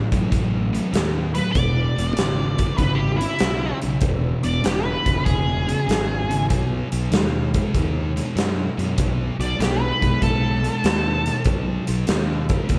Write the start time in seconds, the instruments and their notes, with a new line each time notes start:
0.12 fingered electric bass A1, distorted electric guitar A2 F#3, kick, closed hi-hat
0.31 fingered electric bass A1, distorted electric guitar A2 F#3, kick, closed hi-hat
0.73 distorted electric guitar A2 F#3, closed hi-hat
0.93 fingered electric bass D#2, distorted electric guitar A2 F#3, snare, closed hi-hat
1.34 distorted electric guitar A2 F#3, lead electric guitar B4, closed hi-hat
1.52 fingered electric bass E1, distorted electric guitar E2 B2, lead electric guitar D5, kick, closed hi-hat
1.96 fingered electric bass E1, distorted electric guitar E2 B2, closed hi-hat
2.16 fingered electric bass G#1, distorted electric guitar E2 C#3, snare, closed hi-hat
2.58 distorted electric guitar E2 C#3, kick, closed hi-hat
2.77 fingered electric bass G#1, distorted electric guitar E2 C#3, lead electric guitar B4, kick, closed hi-hat
2.95 lead electric guitar G4
3.16 lead electric guitar E4
3.20 distorted electric guitar E2 C#3, closed hi-hat
3.39 fingered electric bass B1, distorted electric guitar E2 C#3, snare, closed hi-hat
3.82 fingered electric bass B1, distorted electric guitar E2 C#3, closed hi-hat
4.01 fingered electric bass E1, distorted electric guitar E2 B2, kick, closed hi-hat
4.43 fingered electric bass E1, distorted electric guitar E2 B2, lead electric guitar D5, closed hi-hat
4.63 fingered electric bass E1, distorted electric guitar E2 C#3, lead electric guitar G4, snare, closed hi-hat
4.84 lead electric guitar B4
5.05 fingered electric bass E1, distorted electric guitar E2 C#3, kick, closed hi-hat
5.25 fingered electric bass E1, distorted electric guitar E2 C#3, lead electric guitar G#4, kick, closed hi-hat
5.66 distorted electric guitar E2 C#3, closed hi-hat
5.87 fingered electric bass G#1, distorted electric guitar E2 C#3, closed hi-hat
5.91 snare
6.30 distorted electric guitar E2 C#3, closed hi-hat
6.49 fingered electric bass B1, distorted electric guitar B2 F#3, kick, closed hi-hat
6.92 fingered electric bass B1, distorted electric guitar B2 F#3, closed hi-hat
7.11 fingered electric bass D#2, distorted electric guitar B2 G#3, snare, closed hi-hat
7.54 distorted electric guitar B2 G#3, kick, closed hi-hat
7.75 fingered electric bass D#2, distorted electric guitar B2 G#3, kick, closed hi-hat
8.16 distorted electric guitar B2 G#3, closed hi-hat
8.35 fingered electric bass F#2, distorted electric guitar B2 G#3, snare, closed hi-hat
8.77 fingered electric bass F#2, distorted electric guitar B2 G#3, closed hi-hat
8.97 fingered electric bass B1, distorted electric guitar B2 F#3, kick, closed hi-hat
9.39 fingered electric bass B1, distorted electric guitar B2 F#3, lead electric guitar D5, closed hi-hat
9.59 fingered electric bass B1, distorted electric guitar B2 G#3, lead electric guitar G4, snare, closed hi-hat
9.81 lead electric guitar B4
10.01 fingered electric bass B1, distorted electric guitar B2 G#3, kick, closed hi-hat
10.21 fingered electric bass B1, distorted electric guitar B2 G#3, lead electric guitar A4, kick, closed hi-hat
10.64 distorted electric guitar B2 G#3, closed hi-hat
10.84 fingered electric bass D#2, distorted electric guitar B2 G#3, snare, closed hi-hat
11.26 distorted electric guitar B2 G#3, closed hi-hat
11.45 fingered electric bass B1, distorted electric guitar B2 F#3, kick, closed hi-hat
11.87 fingered electric bass B1, distorted electric guitar B2 F#3, closed hi-hat
12.07 fingered electric bass D#2, distorted electric guitar B2 G#3, snare, closed hi-hat
12.49 distorted electric guitar B2 G#3, kick, closed hi-hat
12.69 fingered electric bass D#2, distorted electric guitar B2 G#3, kick, closed hi-hat